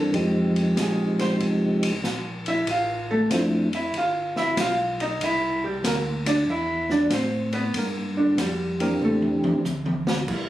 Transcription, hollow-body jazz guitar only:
0.80 1.20 G#4 medium
1.21 1.33 C5 medium
2.48 2.68 E4 medium
2.48 2.68 E5 medium
2.71 3.10 F4 medium
2.71 3.10 F5 medium
3.11 3.31 A3 medium
3.11 3.31 A4 medium
3.34 3.73 C4 medium
3.34 3.73 C5 medium
3.75 3.95 E4 medium
3.75 3.94 E5 loud
3.98 4.37 F4 medium
3.98 4.37 F5 loud
4.37 4.58 E4 medium
4.37 4.57 E5 loud
4.60 5.00 F4 medium
4.60 5.00 F5 medium
5.01 5.21 D#4 medium
5.01 5.21 D#5 medium
5.24 5.64 E4 medium
5.24 5.63 E5 medium
5.64 5.85 G3 soft
5.64 5.84 G4 medium
5.86 6.27 A#3 medium
5.86 6.26 A#4 medium
6.27 6.48 D4 medium
6.27 6.47 D5 medium
6.50 6.90 E4 medium
6.50 6.90 E5 loud
6.91 7.11 D4 medium
6.91 7.11 D5 medium
7.14 7.54 C4 medium
7.14 7.53 C5 medium
7.53 7.74 B3 medium
7.53 7.74 B4 medium
7.77 8.17 A#3 medium
7.77 8.17 A#4 medium
8.17 8.38 D3 medium
8.17 8.38 D4 medium
8.40 8.80 G3 medium
8.40 8.80 G4 medium
8.80 9.01 A#3 medium
8.80 9.01 A#4 medium
9.04 10.15 A3 medium
9.04 10.15 A4 medium
10.28 10.49 G3 soft
10.28 10.49 A#3 soft
10.28 10.49 E4 medium

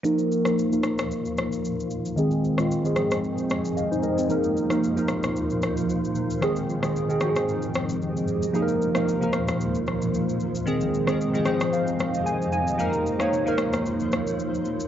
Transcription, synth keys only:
0.04 0.43 F3 medium
0.04 0.43 A#3 medium
0.04 0.44 D#4 medium
0.04 0.44 A#4 medium
0.45 0.70 F3 medium
0.45 0.71 A#3 medium
0.45 0.71 D#4 medium
0.45 0.72 A#4 medium
0.71 1.72 F3 medium
0.71 1.72 A#3 medium
0.71 1.72 D#4 medium
0.71 1.73 A#4 medium
2.16 2.55 D#3 medium
2.16 2.56 G#3 medium
2.16 2.56 C4 medium
2.16 2.57 G#4 medium
2.57 2.83 D#3 medium
2.57 2.83 G#3 medium
2.57 2.84 C4 medium
2.57 2.84 F4 medium
2.84 2.96 D#3 medium
2.84 2.95 G#3 medium
2.84 2.96 C4 medium
2.84 2.97 G#4 medium
2.96 3.97 F3 medium
2.96 3.98 G#3 medium
2.96 3.77 C4 medium
2.96 3.77 G#4 medium
3.50 3.75 G#5 medium
3.77 3.90 D#5 medium
3.77 4.01 F5 medium
3.91 4.03 D#4 medium
3.91 4.03 C5 medium
4.03 4.17 A#4 medium
4.03 4.28 D#5 medium
4.18 4.43 C4 medium
4.18 4.43 G#4 medium
4.29 4.68 F3 medium
4.29 4.68 A#3 medium
4.29 4.69 D#4 medium
4.29 4.69 A#4 medium
4.70 4.95 F3 medium
4.70 4.96 A#3 medium
4.70 4.96 D#4 medium
4.70 4.96 A#4 medium
4.96 5.96 F3 medium
4.96 5.97 A#3 medium
4.96 5.97 D#4 medium
4.96 5.98 A#4 medium
6.41 6.80 D#3 medium
6.41 6.81 G#3 medium
6.41 6.81 C4 medium
6.41 6.81 G#4 medium
6.82 7.07 D#3 medium
6.82 7.08 G#3 medium
6.82 7.08 C4 medium
6.82 7.09 G#4 medium
7.09 7.21 D#3 medium
7.09 7.20 G#3 medium
7.09 7.21 C4 medium
7.09 7.22 G#4 medium
7.21 8.22 F3 medium
7.21 8.22 G#3 medium
7.21 8.23 C4 medium
7.21 7.29 F#4 medium
7.29 8.26 G#4 medium
8.53 8.93 F3 medium
8.53 8.93 A#3 medium
8.53 8.93 D#4 medium
8.53 8.62 G#4 medium
8.62 8.96 A#4 medium
8.95 9.20 F3 medium
8.95 9.20 A#3 medium
8.95 9.21 D#4 medium
8.95 9.21 A#4 medium
9.21 10.21 F3 medium
9.21 10.22 A#3 medium
9.21 10.22 D#4 medium
9.21 10.22 A#4 medium
10.66 11.05 D#3 medium
10.66 11.05 G#3 medium
10.66 11.06 C4 medium
10.66 11.06 G#4 medium
11.07 11.32 D#3 medium
11.07 11.33 G#3 medium
11.07 11.33 C4 medium
11.07 11.34 G#4 medium
11.33 11.46 D#3 medium
11.33 11.45 G#3 medium
11.33 11.46 C4 medium
11.33 11.47 G#4 medium
11.45 12.47 F3 medium
11.45 12.47 G#3 medium
11.45 12.48 C4 medium
11.45 12.48 G#4 medium
11.45 11.71 C5 medium
11.73 12.22 F5 medium
12.26 12.51 G#5 medium
12.53 12.77 G#5 medium
12.78 13.17 F3 medium
12.78 13.18 A#3 medium
12.78 13.18 D#4 medium
12.78 13.19 A#4 medium
13.19 13.45 F3 medium
13.19 13.45 A#3 medium
13.19 13.46 D#4 medium
13.19 13.46 C#5 medium
13.46 14.46 F3 medium
13.46 14.46 A#3 medium
13.46 14.47 D#4 medium
13.46 14.47 A#4 medium

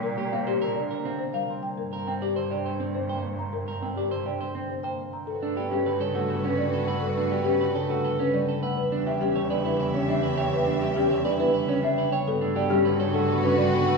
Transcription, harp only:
0.00 0.75 C3 medium
0.00 0.61 D3 medium
0.00 1.33 G3 medium
0.00 0.18 A#3 medium
0.00 1.49 C4 medium
0.19 0.89 A#3 medium
0.62 1.81 D3 medium
0.77 1.81 C3 medium
0.91 1.63 A#3 medium
1.34 5.24 G3 medium
1.50 1.81 C4 medium
1.64 3.09 A#3 medium
1.93 2.65 C4 medium
2.37 4.10 D3 medium
2.52 4.25 C3 medium
2.66 3.38 C4 medium
3.10 4.82 A#3 medium
3.40 3.67 C4 medium
3.68 4.39 C4 medium
4.11 5.30 D3 medium
4.26 5.30 C3 medium
4.41 5.12 C4 medium
4.83 5.30 A#3 medium
5.13 5.30 C4 medium
5.42 6.13 A3 medium
5.56 6.28 B3 medium
5.71 6.57 G3 medium
5.86 7.60 D3 medium
6.00 7.74 C#3 medium
6.14 6.86 A3 medium
6.29 6.72 B3 medium
6.58 7.45 G3 medium
6.73 7.30 B3 medium
6.87 7.15 A3 medium
7.16 7.88 A3 medium
7.31 8.02 B3 medium
7.47 8.32 G3 medium
7.61 8.80 D3 medium
7.75 8.80 C#3 medium
7.89 8.61 A3 medium
8.03 8.46 B3 medium
8.33 9.19 G3 medium
8.47 8.91 B3 medium
8.62 8.79 A3 medium
8.92 9.63 B3 medium
9.06 9.78 C#4 medium
9.20 10.07 G3 medium
9.35 11.09 D3 medium
9.50 11.23 C#3 medium
9.64 10.36 B3 medium
9.79 10.23 C#4 medium
10.08 10.95 G3 medium
10.24 10.79 C#4 medium
10.37 10.65 B3 medium
10.66 11.38 B3 medium
10.81 11.53 C#4 medium
10.96 11.82 G3 medium
11.10 12.29 D3 medium
11.25 12.29 C#3 medium
11.39 12.12 B3 medium
11.54 11.97 C#4 medium
11.83 12.70 G3 medium
11.98 12.29 C#4 medium
12.13 12.26 B3 medium
12.27 12.55 B3 loud
12.42 13.13 A3 medium
12.57 13.28 B3 medium
12.71 13.57 G3 loud
12.86 13.97 D3 medium
13.00 13.97 C#3 medium
13.15 13.86 A3 medium
13.30 13.71 B3 medium
13.58 13.97 G3 medium
13.73 13.97 B3 medium
13.87 13.97 A3 medium

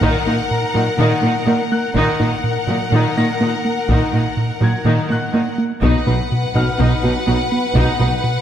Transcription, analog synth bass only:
0.03 0.17 A#2 medium
0.27 0.42 A#2 medium
0.51 0.65 A#2 medium
0.75 0.89 A#2 medium
0.99 1.14 A#2 medium
1.23 1.37 A#3 medium
1.47 1.62 A#3 medium
1.72 1.86 A#3 medium
1.95 2.10 A#2 medium
2.20 2.34 A#2 medium
2.44 2.58 A#2 medium
2.67 2.82 A#2 medium
2.92 3.07 A#2 medium
3.17 3.31 A#3 soft
3.41 3.55 A#3 medium
3.65 3.79 A#3 medium
3.89 4.03 A#2 medium
4.13 4.28 A#2 medium
4.37 4.52 A#2 medium
4.61 4.76 A#2 medium
4.85 5.00 A#2 medium
5.10 5.25 A#3 soft
5.34 5.48 A#3 medium
5.58 5.73 A#3 medium
5.82 5.97 B2 medium
6.07 6.21 B2 medium
6.32 6.46 B2 medium
6.55 6.70 B2 medium
6.81 6.95 B2 medium
7.05 7.19 B3 medium
7.27 7.42 B3 medium
7.52 7.66 B3 medium
7.75 7.90 B2 medium
8.00 8.14 B2 medium
8.24 8.38 B2 medium

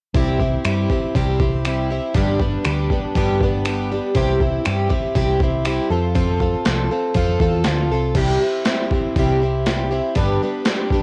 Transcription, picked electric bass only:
0.14 0.56 C2 medium
0.65 0.86 G2 medium
1.15 1.99 C2 medium
2.14 2.56 G1 medium
2.65 2.86 D2 medium
3.16 3.99 G1 medium
4.15 4.57 C2 medium
4.67 4.87 G2 medium
5.16 5.78 C2 medium
5.90 6.53 F2 medium
6.67 6.87 C2 medium
7.15 7.37 F2 medium
7.40 7.63 E2 medium
7.66 7.88 D2 medium
7.90 8.13 C2 medium
8.15 8.36 C2 medium
9.16 9.99 C2 medium
10.16 10.37 G1 medium

